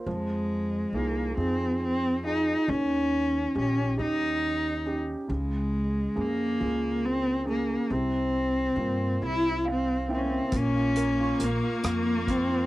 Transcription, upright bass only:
0.06 F2
0.93 C2
1.37 F2
2.68 D#2
3.56 A#1
3.99 D#2
5.30 C#2
6.17 F2
6.61 C#2
7.90 C2
8.76 G2
9.22 C2
10.52 A#1
11.40 A#1
11.84 F2

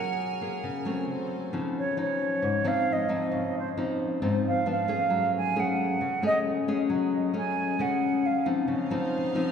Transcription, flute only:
Already playing: F#5
1.78 C#5
2.01 C#5
2.67 F5
2.93 D#5
3.59 C5
4.48 F5
4.71 F5
5.37 G#5
5.59 F#5
6.26 D#5
7.37 G#5
7.81 F#5
8.26 F5

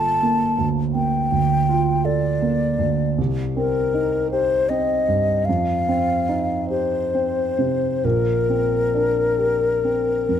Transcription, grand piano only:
Already playing: G1 A#3 F4 A4
0.23 A#3
0.59 D2
0.95 A#3
1.32 D2
1.69 F4
2.05 A4
2.42 A#3
2.79 D2
3.18 C2
3.57 C4
3.94 D#4
4.33 G4
4.70 C4
5.08 G2
5.49 F2
5.89 C4
6.29 D#4
6.70 G4
7.14 C4
7.59 C3
8.04 A#1
8.50 C4
8.95 D4
9.38 G4
9.84 C4
10.29 F2

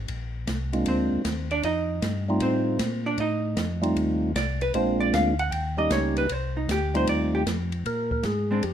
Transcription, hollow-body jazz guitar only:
0.88 C4 C5
1.52 D4 D5
1.65 D#4 D#5
2.42 C4 C5
3.06 D4 D5
3.20 D#4 D#5
4.36 D5
4.62 B4
4.75 C5
5.00 D5
5.14 F5
5.39 F#5
5.52 G5
5.78 D#5
5.92 C#5
6.18 B4
6.32 C5
6.57 D#4
6.71 G4
6.97 C5
7.09 D5
7.35 G4
8.51 G#3 C4 D4

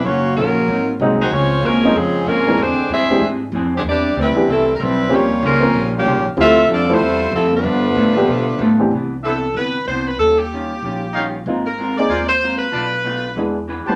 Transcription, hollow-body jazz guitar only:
0.05 D#3 F#3 C#4 F4
0.36 D#3 F#3 C#4 F4
0.68 G#2 F#3 C4
0.72 D#4
1.00 G#2 F#3 C4 D#4
1.33 C#3 F3 G#3 C4
1.65 C#3 F3 G#3 C4
1.95 C#3 F3 G#3 C4
2.27 C#3 F3 G#3 C4
2.59 E3 C4 D4 G#4
2.91 E3 C4 D4 G#4
3.21 E3 C4 D4 G#4
3.53 E3 C4 D4 G#4
3.86 A2 G3 C4 D4
4.16 A2 G3 C4 D4
4.47 A2 G3 C4 D4
4.79 A2 G3 C4 D4
5.11 D#3 C#4 G4 C5
5.41 D#3 C#4 G4 C5
5.74 D#3 C#4 G4 C5
6.05 D#3 C#4 G4 C5
6.37 D3 G3 C4 F4
6.69 D3 G3 C4 F4
7.01 D3 G3 C4 F4
7.34 D3 G3 C4 F4
7.63 G3 B3 F4 A4
7.97 G3 B3 F4 A4
8.27 G3 B3 F4 A4
8.59 G3 B3 F4 A4
8.93 C3 E3 B3
8.97 D4
9.25 C3 E3 B3 D4
9.56 C3 E3 B3
9.61 D4
9.89 C3 E3 B3 D4
10.21 D#3 G3 C#4 F4
10.53 D#3 G3 C#4 F4
10.83 D#3 G3 C#4 F4
11.16 D#3 G3 C#4 F4
11.47 G#3 C4 F4 A#4
11.78 G#3 C4 F4 A#4
12.10 G#3 C4 F4 A#4
12.42 G#3 C4 F4 A#4
12.74 B2 A3 D4 F4
13.04 B2 A3 D4 F4
13.36 E3 D4 G#4 B4
13.68 E3 D4 G#4 B4

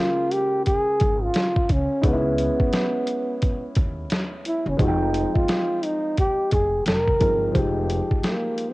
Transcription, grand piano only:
Already playing: C#3 G#3 A#3 F4 C5
2.02 G#3 B3 C#4 D#4
2.06 D#4
2.13 E4
4.77 F3 G#3 C4 D#4
4.82 F#4
4.88 G5
7.19 F3 G#3 C4 D#4 A#4
7.52 F3 G#3 D#4 C5
7.57 G4

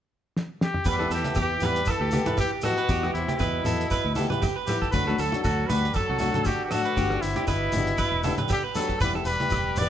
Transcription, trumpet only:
0.63 G4
0.89 B4
1.14 G4
1.40 G4
1.65 B4
1.90 A4
2.40 G4
2.65 F#4
3.14 E4
3.38 E4
4.66 G4
4.91 B4
5.21 A4
5.44 A4
5.67 B4
5.95 A4
6.46 G4
6.64 G4
6.72 F#4
7.21 E4
7.49 E4
8.52 G4
8.75 A4
9.01 B4
9.26 B4
9.78 D5

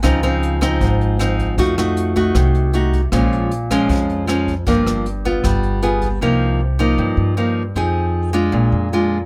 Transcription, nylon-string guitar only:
0.03 C#3 F3 C4 D#4
0.23 F3 C4 D#4
0.61 F3 C4 D#4
0.81 G#2
1.19 F3 C4 D#4
1.58 F3 A3 D#4 F#4
1.78 A3 D#4 F#4
2.16 A3 D#4 F#4
2.36 C3
2.74 A3 D#4 F#4
3.12 A#2 F3 G#3 C#4
3.71 F3 G#3 C#4
3.89 F2
4.27 F3 G#3 C#4
4.67 G2 F3 A#3 D4
5.25 B3 F4
5.44 G3
5.83 B3 F4 G#4
6.22 C3 F3 A#3 D#4
6.79 F3 A#3 D#4
6.99 G2
7.37 F3 A#3 D#4
7.76 F3 C4 D#4 G#4
8.33 G#3 D4 F4
8.52 A#2
8.93 G#3 D4 F4

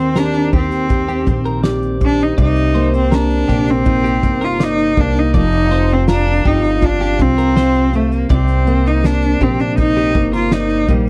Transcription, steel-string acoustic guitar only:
Already playing: D#3 C4 D#4
0.16 G4
0.53 C4
0.90 G4
1.27 C4
1.64 G4
2.01 C4
2.38 C3
2.75 A#3
3.49 A#3
3.86 D#4
4.23 A#3
4.60 D#4
4.97 A#3
5.34 F3
5.71 C4
6.08 F4
6.45 C4
6.81 F4
7.19 C4
7.56 F4
7.93 C4
8.29 C3
8.67 A#3
9.41 A#3
9.77 D#4
10.15 A#3
10.52 D#4
10.88 A#3

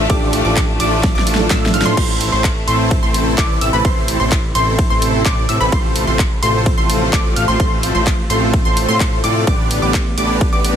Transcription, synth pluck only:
0.10 D6
0.45 D6
0.80 D6
1.15 D6
1.50 E6
1.74 F6
1.85 C6
1.97 C6
2.32 C6
2.68 C6
3.03 C6
3.38 D6
3.61 E6
3.73 B5
3.85 C6
4.20 C6
4.55 C6
4.90 C6
5.25 D6
5.49 E6
5.61 B5
5.72 C6
6.07 C6
6.43 C6
6.78 C6
7.13 D6
7.36 F6
7.48 C6
7.60 C6
7.95 C6
8.30 C6
8.65 C6
8.89 C6
9.24 D6
9.47 D6
9.82 D6
10.18 D6
10.53 D6

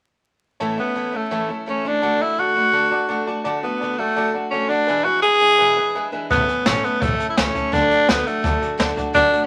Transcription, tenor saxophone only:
0.80 B3
1.16 A3
1.70 C#4
1.87 D4
2.22 E4
2.40 F#4
3.63 B3
3.99 A3
4.51 C#4
4.69 D4
5.05 F#4
5.22 G#4
6.31 B3
6.67 C#4
6.85 B3
7.02 A3
7.30 E4
7.38 C#4
7.72 D4
8.09 B3
8.27 A3
9.15 D4

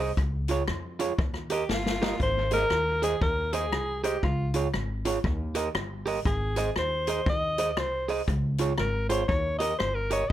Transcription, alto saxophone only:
1.52 G4
1.72 F4
2.22 C5
2.53 A#4
3.03 G#4
3.22 A#4
3.53 G#4
4.04 G4
4.24 F4
6.26 G#4
6.78 C5
7.29 D#5
7.79 C5
8.79 A#4
9.09 C5
9.28 C#5
9.58 D#5
9.78 C5
9.94 A#4
10.13 C#5
10.29 D#5

